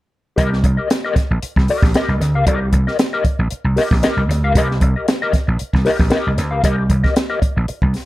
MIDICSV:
0, 0, Header, 1, 6, 480
1, 0, Start_track
1, 0, Key_signature, -3, "minor"
1, 0, Tempo, 521739
1, 350, Time_signature, 4, 2, 24, 8
1, 7408, End_track
2, 0, Start_track
2, 0, Title_t, "Clean electric guitar"
2, 0, Program_c, 0, 27
2, 334, Note_on_c, 0, 67, 84
2, 343, Note_on_c, 0, 70, 85
2, 350, Note_on_c, 0, 75, 91
2, 468, Note_off_c, 0, 75, 0
2, 477, Note_off_c, 0, 70, 0
2, 516, Note_off_c, 0, 67, 0
2, 711, Note_on_c, 0, 75, 60
2, 720, Note_on_c, 0, 70, 55
2, 729, Note_on_c, 0, 67, 53
2, 822, Note_off_c, 0, 67, 0
2, 826, Note_off_c, 0, 70, 0
2, 832, Note_off_c, 0, 75, 0
2, 961, Note_on_c, 0, 75, 89
2, 971, Note_on_c, 0, 70, 76
2, 973, Note_on_c, 0, 67, 70
2, 1070, Note_off_c, 0, 67, 0
2, 1071, Note_off_c, 0, 70, 0
2, 1075, Note_off_c, 0, 75, 0
2, 1559, Note_on_c, 0, 67, 73
2, 1563, Note_on_c, 0, 70, 76
2, 1566, Note_on_c, 0, 75, 80
2, 1673, Note_off_c, 0, 75, 0
2, 1684, Note_off_c, 0, 70, 0
2, 1742, Note_off_c, 0, 67, 0
2, 1796, Note_on_c, 0, 67, 81
2, 1803, Note_on_c, 0, 70, 78
2, 1806, Note_on_c, 0, 75, 91
2, 1968, Note_off_c, 0, 67, 0
2, 1971, Note_off_c, 0, 70, 0
2, 1973, Note_off_c, 0, 75, 0
2, 2164, Note_on_c, 0, 77, 66
2, 2168, Note_on_c, 0, 70, 66
2, 2171, Note_on_c, 0, 67, 60
2, 2260, Note_off_c, 0, 67, 0
2, 2266, Note_off_c, 0, 70, 0
2, 2271, Note_on_c, 0, 67, 75
2, 2275, Note_off_c, 0, 77, 0
2, 2277, Note_on_c, 0, 70, 82
2, 2279, Note_on_c, 0, 75, 78
2, 2396, Note_off_c, 0, 75, 0
2, 2403, Note_off_c, 0, 70, 0
2, 2458, Note_off_c, 0, 67, 0
2, 2642, Note_on_c, 0, 75, 64
2, 2649, Note_on_c, 0, 67, 46
2, 2649, Note_on_c, 0, 70, 63
2, 2740, Note_off_c, 0, 67, 0
2, 2745, Note_off_c, 0, 70, 0
2, 2746, Note_off_c, 0, 75, 0
2, 2880, Note_on_c, 0, 75, 86
2, 2886, Note_on_c, 0, 70, 91
2, 2892, Note_on_c, 0, 67, 77
2, 2985, Note_off_c, 0, 67, 0
2, 2988, Note_off_c, 0, 70, 0
2, 2989, Note_off_c, 0, 75, 0
2, 3463, Note_on_c, 0, 67, 75
2, 3471, Note_on_c, 0, 70, 79
2, 3477, Note_on_c, 0, 75, 89
2, 3587, Note_off_c, 0, 75, 0
2, 3590, Note_off_c, 0, 70, 0
2, 3641, Note_off_c, 0, 67, 0
2, 3706, Note_on_c, 0, 67, 86
2, 3708, Note_on_c, 0, 70, 92
2, 3713, Note_on_c, 0, 75, 90
2, 3883, Note_off_c, 0, 67, 0
2, 3884, Note_off_c, 0, 70, 0
2, 3886, Note_off_c, 0, 75, 0
2, 4085, Note_on_c, 0, 70, 66
2, 4086, Note_on_c, 0, 77, 70
2, 4091, Note_on_c, 0, 67, 60
2, 4187, Note_off_c, 0, 67, 0
2, 4194, Note_off_c, 0, 70, 0
2, 4198, Note_on_c, 0, 67, 75
2, 4206, Note_on_c, 0, 70, 82
2, 4209, Note_off_c, 0, 77, 0
2, 4212, Note_on_c, 0, 75, 86
2, 4312, Note_off_c, 0, 75, 0
2, 4320, Note_off_c, 0, 70, 0
2, 4369, Note_off_c, 0, 67, 0
2, 4564, Note_on_c, 0, 75, 55
2, 4574, Note_on_c, 0, 70, 57
2, 4575, Note_on_c, 0, 67, 51
2, 4669, Note_off_c, 0, 67, 0
2, 4671, Note_off_c, 0, 75, 0
2, 4672, Note_off_c, 0, 70, 0
2, 4803, Note_on_c, 0, 75, 91
2, 4811, Note_on_c, 0, 67, 79
2, 4811, Note_on_c, 0, 70, 87
2, 4908, Note_off_c, 0, 67, 0
2, 4911, Note_off_c, 0, 75, 0
2, 4912, Note_off_c, 0, 70, 0
2, 5380, Note_on_c, 0, 67, 85
2, 5389, Note_on_c, 0, 70, 90
2, 5397, Note_on_c, 0, 75, 85
2, 5499, Note_off_c, 0, 75, 0
2, 5505, Note_off_c, 0, 70, 0
2, 5560, Note_off_c, 0, 67, 0
2, 5613, Note_on_c, 0, 67, 93
2, 5616, Note_on_c, 0, 70, 95
2, 5627, Note_on_c, 0, 75, 94
2, 5796, Note_off_c, 0, 67, 0
2, 5798, Note_off_c, 0, 70, 0
2, 5803, Note_off_c, 0, 75, 0
2, 5987, Note_on_c, 0, 77, 64
2, 5995, Note_on_c, 0, 70, 58
2, 6001, Note_on_c, 0, 67, 62
2, 6097, Note_off_c, 0, 67, 0
2, 6099, Note_off_c, 0, 70, 0
2, 6109, Note_on_c, 0, 67, 83
2, 6110, Note_on_c, 0, 70, 81
2, 6115, Note_off_c, 0, 77, 0
2, 6119, Note_on_c, 0, 75, 86
2, 6230, Note_off_c, 0, 75, 0
2, 6233, Note_off_c, 0, 70, 0
2, 6284, Note_off_c, 0, 67, 0
2, 6473, Note_on_c, 0, 75, 74
2, 6475, Note_on_c, 0, 70, 59
2, 6480, Note_on_c, 0, 67, 51
2, 6579, Note_off_c, 0, 67, 0
2, 6582, Note_off_c, 0, 70, 0
2, 6585, Note_off_c, 0, 75, 0
2, 6713, Note_on_c, 0, 75, 91
2, 6715, Note_on_c, 0, 70, 75
2, 6718, Note_on_c, 0, 67, 73
2, 6812, Note_off_c, 0, 67, 0
2, 6812, Note_off_c, 0, 75, 0
2, 6813, Note_off_c, 0, 70, 0
2, 7408, End_track
3, 0, Start_track
3, 0, Title_t, "Slap bass"
3, 0, Program_c, 1, 36
3, 351, Note_on_c, 1, 36, 105
3, 560, Note_off_c, 1, 36, 0
3, 591, Note_on_c, 1, 36, 105
3, 702, Note_off_c, 1, 36, 0
3, 1202, Note_on_c, 1, 34, 70
3, 1298, Note_off_c, 1, 34, 0
3, 1440, Note_on_c, 1, 36, 92
3, 1537, Note_off_c, 1, 36, 0
3, 1677, Note_on_c, 1, 34, 77
3, 1776, Note_off_c, 1, 34, 0
3, 1918, Note_on_c, 1, 36, 90
3, 2016, Note_off_c, 1, 36, 0
3, 2030, Note_on_c, 1, 38, 85
3, 2165, Note_off_c, 1, 38, 0
3, 2165, Note_on_c, 1, 37, 92
3, 2260, Note_off_c, 1, 37, 0
3, 2272, Note_on_c, 1, 36, 105
3, 2481, Note_off_c, 1, 36, 0
3, 2511, Note_on_c, 1, 36, 105
3, 2622, Note_off_c, 1, 36, 0
3, 3118, Note_on_c, 1, 34, 89
3, 3216, Note_off_c, 1, 34, 0
3, 3353, Note_on_c, 1, 36, 100
3, 3453, Note_off_c, 1, 36, 0
3, 3603, Note_on_c, 1, 34, 89
3, 3699, Note_off_c, 1, 34, 0
3, 3835, Note_on_c, 1, 36, 87
3, 3935, Note_off_c, 1, 36, 0
3, 3942, Note_on_c, 1, 38, 85
3, 4076, Note_off_c, 1, 38, 0
3, 4076, Note_on_c, 1, 37, 89
3, 4175, Note_off_c, 1, 37, 0
3, 4195, Note_on_c, 1, 36, 119
3, 4402, Note_off_c, 1, 36, 0
3, 4431, Note_on_c, 1, 36, 98
3, 4542, Note_off_c, 1, 36, 0
3, 5040, Note_on_c, 1, 34, 75
3, 5138, Note_off_c, 1, 34, 0
3, 5280, Note_on_c, 1, 36, 93
3, 5377, Note_off_c, 1, 36, 0
3, 5516, Note_on_c, 1, 34, 90
3, 5615, Note_off_c, 1, 34, 0
3, 5767, Note_on_c, 1, 36, 83
3, 5861, Note_off_c, 1, 36, 0
3, 5870, Note_on_c, 1, 38, 91
3, 6004, Note_off_c, 1, 38, 0
3, 6004, Note_on_c, 1, 37, 95
3, 6099, Note_off_c, 1, 37, 0
3, 6109, Note_on_c, 1, 36, 96
3, 6319, Note_off_c, 1, 36, 0
3, 6352, Note_on_c, 1, 36, 88
3, 6462, Note_off_c, 1, 36, 0
3, 6962, Note_on_c, 1, 34, 79
3, 7058, Note_off_c, 1, 34, 0
3, 7196, Note_on_c, 1, 36, 79
3, 7295, Note_off_c, 1, 36, 0
3, 7408, End_track
4, 0, Start_track
4, 0, Title_t, "Muted clean electric guitar strokes"
4, 479, Note_on_c, 9, 29, 48
4, 571, Note_off_c, 9, 29, 0
4, 598, Note_on_c, 9, 29, 38
4, 690, Note_off_c, 9, 29, 0
4, 833, Note_on_c, 9, 29, 35
4, 925, Note_off_c, 9, 29, 0
4, 1081, Note_on_c, 9, 29, 34
4, 1173, Note_off_c, 9, 29, 0
4, 1215, Note_on_c, 9, 29, 49
4, 1307, Note_off_c, 9, 29, 0
4, 1447, Note_on_c, 9, 29, 50
4, 1539, Note_off_c, 9, 29, 0
4, 1684, Note_on_c, 9, 29, 46
4, 1776, Note_off_c, 9, 29, 0
4, 2025, Note_on_c, 9, 29, 47
4, 2117, Note_off_c, 9, 29, 0
4, 2407, Note_on_c, 9, 29, 40
4, 2499, Note_off_c, 9, 29, 0
4, 2518, Note_on_c, 9, 29, 38
4, 2610, Note_off_c, 9, 29, 0
4, 2751, Note_on_c, 9, 29, 32
4, 2843, Note_off_c, 9, 29, 0
4, 2996, Note_on_c, 9, 29, 37
4, 3088, Note_off_c, 9, 29, 0
4, 3123, Note_on_c, 9, 29, 54
4, 3215, Note_off_c, 9, 29, 0
4, 3355, Note_on_c, 9, 29, 46
4, 3447, Note_off_c, 9, 29, 0
4, 3598, Note_on_c, 9, 29, 46
4, 3690, Note_off_c, 9, 29, 0
4, 3960, Note_on_c, 9, 29, 48
4, 4052, Note_off_c, 9, 29, 0
4, 4323, Note_on_c, 9, 29, 46
4, 4415, Note_off_c, 9, 29, 0
4, 4441, Note_on_c, 9, 29, 38
4, 4533, Note_off_c, 9, 29, 0
4, 4680, Note_on_c, 9, 29, 39
4, 4772, Note_off_c, 9, 29, 0
4, 4919, Note_on_c, 9, 29, 38
4, 5011, Note_off_c, 9, 29, 0
4, 5035, Note_on_c, 9, 29, 50
4, 5127, Note_off_c, 9, 29, 0
4, 5273, Note_on_c, 9, 29, 44
4, 5365, Note_off_c, 9, 29, 0
4, 5510, Note_on_c, 9, 29, 57
4, 5602, Note_off_c, 9, 29, 0
4, 5862, Note_on_c, 9, 29, 44
4, 5954, Note_off_c, 9, 29, 0
4, 6241, Note_on_c, 9, 29, 52
4, 6333, Note_off_c, 9, 29, 0
4, 6350, Note_on_c, 9, 29, 35
4, 6442, Note_off_c, 9, 29, 0
4, 6590, Note_on_c, 9, 29, 34
4, 6682, Note_off_c, 9, 29, 0
4, 6823, Note_on_c, 9, 29, 44
4, 6915, Note_off_c, 9, 29, 0
4, 6959, Note_on_c, 9, 29, 52
4, 7051, Note_off_c, 9, 29, 0
4, 7070, Note_on_c, 9, 29, 46
4, 7162, Note_off_c, 9, 29, 0
4, 7201, Note_on_c, 9, 29, 52
4, 7293, Note_off_c, 9, 29, 0
4, 7408, End_track
5, 0, Start_track
5, 0, Title_t, "Muted slap bass strokes"
5, 1068, Note_on_c, 9, 29, 47
5, 1160, Note_off_c, 9, 29, 0
5, 1315, Note_on_c, 9, 29, 45
5, 1407, Note_off_c, 9, 29, 0
5, 2987, Note_on_c, 9, 29, 45
5, 3079, Note_off_c, 9, 29, 0
5, 3240, Note_on_c, 9, 29, 43
5, 3332, Note_off_c, 9, 29, 0
5, 4912, Note_on_c, 9, 29, 49
5, 5004, Note_off_c, 9, 29, 0
5, 5166, Note_on_c, 9, 29, 50
5, 5258, Note_off_c, 9, 29, 0
5, 6830, Note_on_c, 9, 29, 52
5, 6922, Note_off_c, 9, 29, 0
5, 7082, Note_on_c, 9, 29, 41
5, 7174, Note_off_c, 9, 29, 0
5, 7408, End_track
6, 0, Start_track
6, 0, Title_t, "Drums"
6, 348, Note_on_c, 9, 36, 110
6, 351, Note_on_c, 9, 42, 84
6, 440, Note_off_c, 9, 36, 0
6, 443, Note_off_c, 9, 42, 0
6, 486, Note_on_c, 9, 38, 37
6, 578, Note_off_c, 9, 38, 0
6, 587, Note_on_c, 9, 36, 95
6, 588, Note_on_c, 9, 42, 61
6, 679, Note_off_c, 9, 36, 0
6, 680, Note_off_c, 9, 42, 0
6, 831, Note_on_c, 9, 42, 98
6, 836, Note_on_c, 9, 38, 110
6, 923, Note_off_c, 9, 42, 0
6, 928, Note_off_c, 9, 38, 0
6, 1067, Note_on_c, 9, 36, 97
6, 1070, Note_on_c, 9, 42, 76
6, 1076, Note_on_c, 9, 38, 32
6, 1159, Note_off_c, 9, 36, 0
6, 1162, Note_off_c, 9, 42, 0
6, 1168, Note_off_c, 9, 38, 0
6, 1311, Note_on_c, 9, 42, 88
6, 1403, Note_off_c, 9, 42, 0
6, 1438, Note_on_c, 9, 36, 86
6, 1451, Note_on_c, 9, 38, 44
6, 1530, Note_off_c, 9, 36, 0
6, 1543, Note_off_c, 9, 38, 0
6, 1548, Note_on_c, 9, 46, 66
6, 1640, Note_off_c, 9, 46, 0
6, 1679, Note_on_c, 9, 36, 116
6, 1690, Note_on_c, 9, 38, 39
6, 1771, Note_off_c, 9, 36, 0
6, 1782, Note_off_c, 9, 38, 0
6, 1788, Note_on_c, 9, 42, 85
6, 1799, Note_on_c, 9, 38, 106
6, 1880, Note_off_c, 9, 42, 0
6, 1891, Note_off_c, 9, 38, 0
6, 2037, Note_on_c, 9, 42, 87
6, 2038, Note_on_c, 9, 38, 34
6, 2129, Note_off_c, 9, 42, 0
6, 2130, Note_off_c, 9, 38, 0
6, 2269, Note_on_c, 9, 36, 127
6, 2269, Note_on_c, 9, 42, 96
6, 2361, Note_off_c, 9, 36, 0
6, 2361, Note_off_c, 9, 42, 0
6, 2508, Note_on_c, 9, 42, 68
6, 2509, Note_on_c, 9, 36, 95
6, 2600, Note_off_c, 9, 42, 0
6, 2601, Note_off_c, 9, 36, 0
6, 2645, Note_on_c, 9, 38, 36
6, 2737, Note_off_c, 9, 38, 0
6, 2750, Note_on_c, 9, 42, 97
6, 2755, Note_on_c, 9, 38, 122
6, 2842, Note_off_c, 9, 42, 0
6, 2847, Note_off_c, 9, 38, 0
6, 2986, Note_on_c, 9, 36, 85
6, 2987, Note_on_c, 9, 42, 76
6, 3078, Note_off_c, 9, 36, 0
6, 3079, Note_off_c, 9, 42, 0
6, 3225, Note_on_c, 9, 42, 85
6, 3317, Note_off_c, 9, 42, 0
6, 3467, Note_on_c, 9, 46, 66
6, 3479, Note_on_c, 9, 38, 33
6, 3559, Note_off_c, 9, 46, 0
6, 3571, Note_off_c, 9, 38, 0
6, 3598, Note_on_c, 9, 36, 109
6, 3609, Note_on_c, 9, 38, 41
6, 3690, Note_off_c, 9, 36, 0
6, 3701, Note_off_c, 9, 38, 0
6, 3708, Note_on_c, 9, 42, 92
6, 3718, Note_on_c, 9, 38, 104
6, 3800, Note_off_c, 9, 42, 0
6, 3810, Note_off_c, 9, 38, 0
6, 3962, Note_on_c, 9, 42, 85
6, 3963, Note_on_c, 9, 38, 33
6, 4054, Note_off_c, 9, 42, 0
6, 4055, Note_off_c, 9, 38, 0
6, 4189, Note_on_c, 9, 36, 120
6, 4191, Note_on_c, 9, 42, 95
6, 4281, Note_off_c, 9, 36, 0
6, 4283, Note_off_c, 9, 42, 0
6, 4334, Note_on_c, 9, 38, 36
6, 4426, Note_off_c, 9, 38, 0
6, 4427, Note_on_c, 9, 42, 59
6, 4429, Note_on_c, 9, 36, 97
6, 4519, Note_off_c, 9, 42, 0
6, 4521, Note_off_c, 9, 36, 0
6, 4674, Note_on_c, 9, 42, 84
6, 4678, Note_on_c, 9, 38, 116
6, 4766, Note_off_c, 9, 42, 0
6, 4770, Note_off_c, 9, 38, 0
6, 4906, Note_on_c, 9, 36, 83
6, 4909, Note_on_c, 9, 42, 71
6, 4914, Note_on_c, 9, 38, 34
6, 4998, Note_off_c, 9, 36, 0
6, 5001, Note_off_c, 9, 42, 0
6, 5006, Note_off_c, 9, 38, 0
6, 5144, Note_on_c, 9, 42, 70
6, 5236, Note_off_c, 9, 42, 0
6, 5276, Note_on_c, 9, 36, 98
6, 5287, Note_on_c, 9, 38, 40
6, 5368, Note_off_c, 9, 36, 0
6, 5379, Note_off_c, 9, 38, 0
6, 5388, Note_on_c, 9, 46, 65
6, 5480, Note_off_c, 9, 46, 0
6, 5515, Note_on_c, 9, 36, 102
6, 5520, Note_on_c, 9, 38, 38
6, 5607, Note_off_c, 9, 36, 0
6, 5612, Note_off_c, 9, 38, 0
6, 5616, Note_on_c, 9, 42, 89
6, 5627, Note_on_c, 9, 38, 121
6, 5708, Note_off_c, 9, 42, 0
6, 5719, Note_off_c, 9, 38, 0
6, 5869, Note_on_c, 9, 42, 85
6, 5870, Note_on_c, 9, 38, 31
6, 5961, Note_off_c, 9, 42, 0
6, 5962, Note_off_c, 9, 38, 0
6, 6106, Note_on_c, 9, 36, 113
6, 6107, Note_on_c, 9, 42, 94
6, 6198, Note_off_c, 9, 36, 0
6, 6199, Note_off_c, 9, 42, 0
6, 6345, Note_on_c, 9, 36, 95
6, 6346, Note_on_c, 9, 42, 69
6, 6437, Note_off_c, 9, 36, 0
6, 6438, Note_off_c, 9, 42, 0
6, 6479, Note_on_c, 9, 36, 89
6, 6483, Note_on_c, 9, 38, 37
6, 6571, Note_off_c, 9, 36, 0
6, 6575, Note_off_c, 9, 38, 0
6, 6588, Note_on_c, 9, 42, 95
6, 6593, Note_on_c, 9, 38, 118
6, 6680, Note_off_c, 9, 42, 0
6, 6685, Note_off_c, 9, 38, 0
6, 6826, Note_on_c, 9, 36, 93
6, 6831, Note_on_c, 9, 42, 75
6, 6918, Note_off_c, 9, 36, 0
6, 6923, Note_off_c, 9, 42, 0
6, 7068, Note_on_c, 9, 42, 72
6, 7160, Note_off_c, 9, 42, 0
6, 7193, Note_on_c, 9, 36, 93
6, 7285, Note_off_c, 9, 36, 0
6, 7303, Note_on_c, 9, 46, 61
6, 7315, Note_on_c, 9, 38, 37
6, 7395, Note_off_c, 9, 46, 0
6, 7407, Note_off_c, 9, 38, 0
6, 7408, End_track
0, 0, End_of_file